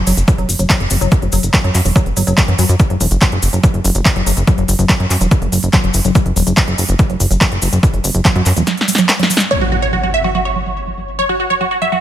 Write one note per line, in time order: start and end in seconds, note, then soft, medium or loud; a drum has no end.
0.07 0.13 F#1 loud
0.07 0.14 F#3 medium
0.07 open hi-hat loud
0.07 cabasa medium
0.17 0.23 F#1 medium
0.17 closed hi-hat medium
0.17 cabasa medium
0.28 0.35 F#3 medium
0.28 kick loud
0.28 closed hi-hat medium
0.28 cabasa soft
0.38 0.44 F#1 medium
0.38 0.46 F#3 loud
0.38 closed hi-hat soft
0.49 0.55 F#1 medium
0.49 open hi-hat loud
0.49 cabasa loud
0.59 0.65 F#1 medium
0.59 0.67 F#3 medium
0.59 closed hi-hat medium
0.59 cabasa medium
0.70 0.77 F#3 loud
0.70 kick loud
0.70 clap loud
0.70 closed hi-hat soft
0.70 cabasa soft
0.80 0.86 F#1 medium
0.80 closed hi-hat soft
0.90 0.97 F#1 loud
0.90 0.98 F#3 medium
0.90 open hi-hat loud
0.90 cabasa loud
1.01 1.07 F#1 medium
1.01 1.09 F#3 medium
1.01 closed hi-hat medium
1.01 cabasa medium
1.11 kick loud
1.11 closed hi-hat soft
1.11 cabasa soft
1.22 1.28 F#1 medium
1.22 1.30 F#3 medium
1.22 closed hi-hat soft
1.32 1.39 F#1 loud
1.32 1.40 F#3 loud
1.32 open hi-hat loud
1.32 cabasa medium
1.43 1.49 F#1 medium
1.43 closed hi-hat medium
1.43 cabasa medium
1.54 1.61 F#3 medium
1.54 kick loud
1.54 clap loud
1.54 closed hi-hat soft
1.54 cabasa soft
1.64 1.70 F#2 medium
1.64 1.72 F#3 loud
1.64 closed hi-hat soft
1.75 1.81 F#2 loud
1.75 clap soft
1.75 open hi-hat loud
1.75 cabasa medium
1.85 1.91 E1 medium
1.85 1.93 F#3 medium
1.85 open hi-hat medium
1.85 cabasa medium
1.96 2.03 F#3 loud
1.96 kick loud
1.96 closed hi-hat medium
1.96 cabasa soft
2.06 2.12 F#1 medium
2.06 closed hi-hat soft
2.17 2.23 G1 loud
2.17 2.20 F#3 loud
2.17 open hi-hat loud
2.17 cabasa medium
2.27 2.33 F#1 medium
2.27 2.32 F#3 loud
2.27 closed hi-hat medium
2.27 cabasa medium
2.38 2.41 G3 medium
2.38 kick loud
2.38 clap loud
2.38 closed hi-hat soft
2.38 cabasa soft
2.48 2.54 F#2 medium
2.48 2.53 E3 medium
2.48 closed hi-hat soft
2.59 2.65 F#2 loud
2.59 2.64 F#3 loud
2.59 open hi-hat loud
2.59 cabasa medium
2.69 2.75 F#2 medium
2.69 closed hi-hat soft
2.69 cabasa soft
2.79 kick loud
2.79 closed hi-hat soft
2.79 cabasa soft
2.90 2.96 F#1 medium
2.90 2.97 F#3 medium
2.90 closed hi-hat soft
3.01 3.07 E1 loud
3.01 3.05 F#3 medium
3.01 open hi-hat loud
3.01 cabasa medium
3.11 3.17 F#1 medium
3.11 closed hi-hat soft
3.11 cabasa soft
3.22 3.29 F#3 medium
3.22 kick loud
3.22 clap loud
3.22 closed hi-hat soft
3.22 cabasa soft
3.32 3.38 F#1 loud
3.32 3.37 F#3 medium
3.32 closed hi-hat soft
3.42 3.49 F#1 medium
3.42 open hi-hat loud
3.42 cabasa medium
3.53 3.59 F#1 medium
3.53 3.60 F#3 medium
3.53 closed hi-hat medium
3.53 cabasa soft
3.63 3.68 F#3 medium
3.63 kick loud
3.63 closed hi-hat medium
3.63 cabasa soft
3.74 3.80 F#1 medium
3.74 closed hi-hat soft
3.84 3.91 F#1 loud
3.84 3.92 F#3 medium
3.84 open hi-hat loud
3.84 cabasa medium
3.95 4.01 F#1 medium
3.95 4.00 F#3 medium
3.95 closed hi-hat medium
3.95 cabasa soft
4.05 kick loud
4.05 clap loud
4.05 closed hi-hat soft
4.05 cabasa soft
4.16 4.22 F#1 medium
4.16 4.23 F#3 medium
4.16 closed hi-hat soft
4.26 4.33 F#1 loud
4.26 4.31 F#3 medium
4.26 open hi-hat loud
4.26 cabasa medium
4.37 4.43 F#1 loud
4.37 closed hi-hat medium
4.37 cabasa medium
4.47 4.55 F#3 medium
4.47 kick loud
4.47 closed hi-hat medium
4.47 cabasa soft
4.58 4.64 F#1 medium
4.58 4.63 F#3 medium
4.58 closed hi-hat soft
4.68 4.75 F#1 loud
4.68 open hi-hat loud
4.68 cabasa medium
4.79 4.85 F#1 medium
4.79 4.86 F#3 medium
4.79 closed hi-hat medium
4.79 cabasa medium
4.89 4.94 F#3 medium
4.89 kick loud
4.89 clap loud
4.89 closed hi-hat medium
4.89 cabasa soft
5.00 5.06 F#2 medium
5.00 closed hi-hat soft
5.10 5.17 F#2 loud
5.10 5.18 F#3 medium
5.10 clap soft
5.10 open hi-hat loud
5.10 cabasa medium
5.21 5.27 E1 medium
5.21 5.26 F#3 medium
5.21 closed hi-hat medium
5.21 cabasa medium
5.31 kick loud
5.31 closed hi-hat medium
5.31 cabasa soft
5.42 5.48 F#1 medium
5.42 5.49 F#3 medium
5.42 closed hi-hat soft
5.52 5.58 F#1 loud
5.52 5.57 F#3 medium
5.52 open hi-hat loud
5.52 cabasa medium
5.63 5.69 F#1 medium
5.63 closed hi-hat medium
5.63 cabasa soft
5.73 5.81 F#3 medium
5.73 kick loud
5.73 clap loud
5.73 closed hi-hat medium
5.73 cabasa soft
5.84 5.90 F#1 medium
5.84 5.89 F#3 medium
5.84 closed hi-hat soft
5.94 6.00 F#1 loud
5.94 open hi-hat loud
5.94 cabasa medium
6.05 6.11 F#1 medium
6.05 6.12 F#3 medium
6.05 closed hi-hat medium
6.05 cabasa soft
6.15 6.20 F#3 medium
6.15 kick loud
6.15 closed hi-hat medium
6.15 cabasa soft
6.26 6.32 F#1 medium
6.26 closed hi-hat soft
6.36 6.42 E1 loud
6.36 6.44 F#3 medium
6.36 open hi-hat loud
6.36 cabasa medium
6.47 6.53 F#1 medium
6.47 6.52 F#3 medium
6.47 closed hi-hat medium
6.47 cabasa medium
6.56 kick loud
6.56 clap loud
6.56 closed hi-hat medium
6.56 cabasa soft
6.68 6.74 F#1 medium
6.68 6.75 F#3 medium
6.68 closed hi-hat soft
6.78 6.84 F#1 loud
6.78 6.83 F#3 medium
6.78 open hi-hat loud
6.78 cabasa medium
6.89 6.95 F#1 medium
6.89 closed hi-hat medium
6.89 cabasa soft
6.99 7.07 F#3 medium
6.99 kick loud
6.99 closed hi-hat medium
6.99 cabasa soft
7.10 7.16 F#1 medium
7.10 7.15 F#3 medium
7.10 closed hi-hat soft
7.20 7.26 F#1 medium
7.20 open hi-hat loud
7.20 cabasa medium
7.31 7.37 F#1 medium
7.31 7.38 F#3 medium
7.31 closed hi-hat medium
7.31 cabasa medium
7.41 7.46 F#3 medium
7.41 kick loud
7.41 clap loud
7.41 closed hi-hat medium
7.41 cabasa soft
7.52 7.58 F#1 medium
7.52 closed hi-hat soft
7.62 7.68 F#1 loud
7.62 7.69 F#3 medium
7.62 open hi-hat loud
7.62 cabasa medium
7.72 7.79 F#1 medium
7.72 7.77 F#3 medium
7.72 closed hi-hat medium
7.72 cabasa medium
7.83 kick loud
7.83 closed hi-hat medium
7.83 cabasa soft
7.94 8.00 F#1 medium
7.94 8.01 F#3 medium
7.94 closed hi-hat soft
8.04 8.10 F#1 loud
8.04 8.09 F#3 medium
8.04 open hi-hat loud
8.04 cabasa loud
8.14 8.21 F#1 medium
8.14 closed hi-hat medium
8.14 cabasa soft
8.25 8.32 F#3 medium
8.25 kick loud
8.25 clap loud
8.25 closed hi-hat medium
8.25 cabasa soft
8.36 8.42 F#2 loud
8.36 8.40 F#3 medium
8.36 closed hi-hat soft
8.46 8.52 F#2 loud
8.46 clap soft
8.46 open hi-hat loud
8.46 cabasa medium
8.56 8.63 E1 medium
8.56 8.64 F#3 medium
8.56 closed hi-hat medium
8.56 cabasa medium
8.67 8.72 F#3 medium
8.67 snare medium
8.67 closed hi-hat medium
8.67 cabasa soft
8.77 snare medium
8.77 closed hi-hat soft
8.88 8.93 G3 medium
8.88 open hi-hat loud
8.88 cabasa loud
8.95 9.03 F#3 loud
8.95 snare medium
8.95 closed hi-hat medium
8.95 cabasa medium
9.09 snare medium
9.09 clap loud
9.09 closed hi-hat medium
9.09 cabasa soft
9.19 9.27 F#3 loud
9.19 snare loud
9.19 closed hi-hat soft
9.30 9.35 F#3 medium
9.30 open hi-hat loud
9.30 cabasa medium
9.37 9.48 G3 medium
9.37 snare loud
9.37 closed hi-hat medium
9.37 cabasa soft
9.51 9.56 C#5 loud
9.51 impact medium
9.61 9.69 F#3 medium
9.61 9.67 F#4 medium
9.72 9.77 F#3 medium
9.72 9.77 F#4 medium
9.82 9.88 C#5 medium
9.93 10.00 F#3 medium
9.93 9.98 F#4 medium
10.03 10.08 F#3 medium
10.03 10.09 F#4 medium
10.14 10.19 E5 loud
10.24 10.32 F#3 medium
10.24 10.29 F#4 medium
10.35 10.40 F#3 medium
10.35 10.40 F#4 medium
10.45 11.10 C#5 loud
10.56 10.63 F#3 medium
10.66 10.71 F#3 medium
10.87 10.95 F#3 medium
10.98 11.03 F#3 medium
11.19 11.26 F#3 medium
11.19 11.24 C#5 loud
11.29 11.34 F#3 medium
11.29 11.34 F#4 medium
11.40 11.45 F#4 medium
11.50 11.58 F#3 medium
11.50 11.55 C#5 medium
11.61 11.66 F#3 medium
11.61 11.66 F#4 medium
11.71 11.76 F#4 medium
11.82 11.89 F#3 medium
11.82 11.87 E5 loud
11.92 11.97 F#3 medium
11.92 11.97 F#4 medium